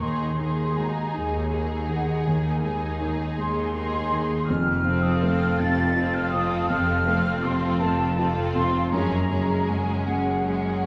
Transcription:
0.01 felt piano D#2, double bass section D#2, cello section D#2, harp D#3, viola section D#4, violin section G#4, flute section C6
0.39 felt piano D#3, viola section D#4, violin section G#4, harp G#4
0.77 felt piano G#3, harp F#4, flute section A#5
1.14 double bass section D#2, cello section D#2, felt piano D#3, harp G#4, flute section G#5
1.52 viola section D#4, felt piano G#4, violin section G#4, harp A#4
1.89 felt piano D#3, harp G#4, flute section F#5
2.26 double bass section D#2, cello section D#2, felt piano D#2, harp D#3, flute section G#5
2.63 felt piano G#3, viola section D#4, harp D#4, violin section G#4
3.00 felt piano D#3, harp C#4
3.37 cello section D#2, double bass section D#2, felt piano G#3, harp G#4, flute section C6
3.74 viola section D#4, felt piano G#4, violin section G#4, harp A#4
4.12 felt piano D#3, harp G#4
4.47 double bass section F1, harp F2, cello section F2, felt piano F2, flute section F6
4.85 felt piano C3, viola section C4, harp F4, violin section F4 A4
5.03 flute section D#6
5.21 felt piano A3, harp D#4, flute section F6
5.58 double bass section F1, cello section F2, felt piano C3, harp F4, flute section A6
5.96 viola section C4, felt piano F4, violin section F4 A4, harp A4
6.15 flute section F6
6.31 felt piano C3, harp F4, flute section D#6
6.69 double bass section F1, harp F2, felt piano F2, cello section F2, flute section F6
7.07 felt piano A3, harp C4, viola section C4, violin section F4 A4
7.43 felt piano C3, harp A#3, flute section C6
7.80 double bass section F1, cello section F2, felt piano A3, harp F4, flute section A5
8.18 viola section C4, felt piano F4, violin section F4 A4, harp A4
8.53 felt piano C3, harp F4, flute section C6
8.91 double bass section F#1, cello section F#2, felt piano F#2, harp F#2, viola section G#3, violin section C#4 G#4, flute section A#5
9.31 felt piano C#3, viola section G#3, violin section C#4 G#4, harp G#4
9.68 felt piano G#3, harp F#4, flute section G#5
10.07 double bass section F#1, cello section F#2, felt piano C#3, harp G#4, flute section F#5
10.45 viola section G#3, violin section C#4 G#4, felt piano G#4, harp A#4

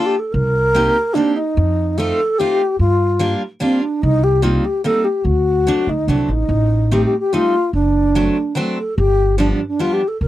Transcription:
Already playing: steel-string acoustic guitar A#3 D4 F4 A4
0.05 alto flute G4
0.19 alto flute A4
0.32 upright bass C2, alto flute A#4
0.74 steel-string acoustic guitar A#3 C4 D#4 G4
1.13 steel-string acoustic guitar A#3 C4 D#4 G4, alto flute D4
1.36 alto flute D#4
1.57 upright bass F2
1.98 steel-string acoustic guitar A3 C4 D#4 F4, alto flute A4
2.38 steel-string acoustic guitar A3 C4 D#4 F4, alto flute G4
2.79 upright bass G2, alto flute F4
3.19 steel-string acoustic guitar G3 A#3 D4 F4
3.60 steel-string acoustic guitar G3 A#3 D4 F4, alto flute C4
3.81 alto flute D4
4.02 upright bass C2, alto flute D#4
4.23 alto flute G4
4.42 steel-string acoustic guitar G3 A#3 C4 D#4, alto flute F4
4.64 alto flute G4
4.84 steel-string acoustic guitar G3 A#3 C4 D#4, alto flute A4
5.04 alto flute G4
5.24 upright bass D2, alto flute F#4
5.67 steel-string acoustic guitar F#3 A3 C4 D4
5.87 upright bass D2, alto flute D#4
6.08 upright bass C2, steel-string acoustic guitar F#3 A3 C4 D4, alto flute D4
6.28 upright bass A1, alto flute D#4
6.49 upright bass A1
6.91 steel-string acoustic guitar G3 A3 C4 D#4, alto flute G4
7.05 alto flute G4
7.19 alto flute G4
7.33 steel-string acoustic guitar G3 A3 C4 D#4, alto flute F4
7.73 upright bass F#1, alto flute D4
8.15 steel-string acoustic guitar F#3 A3 C4 D4
8.55 steel-string acoustic guitar F#3 A3 C4 D4
8.78 alto flute A4
8.97 upright bass G1, alto flute G4
9.38 steel-string acoustic guitar F3 G3 B3 D4, alto flute D4
9.52 alto flute D4
9.67 alto flute D4
9.79 steel-string acoustic guitar F3 G3 B3 D4, alto flute F4
9.93 alto flute G4
10.07 alto flute A4
10.21 upright bass C2, alto flute A#4

